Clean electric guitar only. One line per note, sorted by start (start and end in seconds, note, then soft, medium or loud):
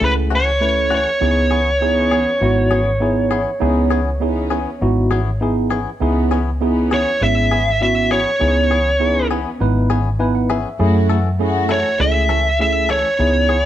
0.31 0.50 E3 medium
0.31 0.50 A3 medium
0.31 0.49 C#4 medium
0.31 0.49 F#4 medium
0.90 1.10 E3 medium
0.90 1.09 A3 medium
0.90 1.09 C#4 medium
0.90 1.09 F#4 medium
1.51 1.70 E3 medium
1.51 1.70 B3 medium
1.51 1.70 C#4 medium
1.51 1.69 G#4 medium
2.11 2.30 E3 medium
2.11 2.30 B3 medium
2.11 2.30 C#4 medium
2.11 2.30 G#4 medium
2.71 2.90 E3 medium
2.71 2.90 B3 medium
2.71 2.90 C#4 medium
2.71 2.89 G#4 medium
3.31 3.50 E3 medium
3.31 3.50 B3 medium
3.31 3.50 C#4 medium
3.31 3.49 G#4 medium
3.91 4.10 E3 medium
3.91 4.10 B3 medium
3.91 4.09 C#4 medium
3.91 4.09 G#4 medium
4.50 4.70 E3 medium
4.50 4.70 B3 medium
4.50 4.69 C#4 medium
4.50 4.69 G#4 medium
5.11 5.30 E3 medium
5.11 5.30 B3 medium
5.11 5.30 C#4 medium
5.11 5.29 G#4 medium
5.71 5.90 E3 medium
5.71 5.90 B3 medium
5.71 5.89 C#4 medium
5.71 5.89 G#4 medium
6.31 6.50 E3 medium
6.31 6.50 B3 medium
6.31 6.50 C#4 medium
6.31 6.49 G#4 medium
6.91 7.10 E3 medium
6.91 7.10 B3 medium
6.91 7.10 C#4 medium
6.91 7.09 G#4 medium
7.51 7.70 E3 soft
7.51 7.70 B3 medium
7.51 7.70 C#4 medium
7.51 7.69 G#4 medium
8.11 8.30 E3 medium
8.11 8.29 B3 medium
8.11 8.29 C#4 medium
8.11 8.29 G#4 medium
8.71 8.89 E3 medium
8.71 8.89 B3 medium
8.71 8.89 C#4 medium
8.71 8.89 G#4 medium
9.31 9.49 E3 medium
9.31 9.49 B3 medium
9.31 9.49 C#4 medium
9.31 9.49 G#4 medium
9.90 10.09 E3 medium
9.90 10.09 B3 medium
9.90 10.09 C#4 medium
9.90 10.08 G#4 medium
10.50 10.69 E3 medium
10.50 10.69 B3 medium
10.50 10.68 C#4 medium
10.50 10.68 G#4 medium
11.10 11.29 E3 medium
11.10 11.28 A3 medium
11.10 11.28 C#4 medium
11.10 11.28 A4 medium
11.69 11.88 E3 medium
11.69 11.88 A3 medium
11.69 11.88 C#4 medium
11.69 11.88 A4 medium
12.29 12.48 E3 medium
12.29 12.48 A3 medium
12.29 12.48 C#4 medium
12.29 12.47 A4 medium
12.89 13.08 E3 medium
12.89 13.08 A3 medium
12.89 13.08 C#4 medium
12.89 13.07 A4 medium
13.49 13.65 E3 medium
13.49 13.65 B3 medium
13.49 13.65 C#4 medium
13.49 13.65 G#4 medium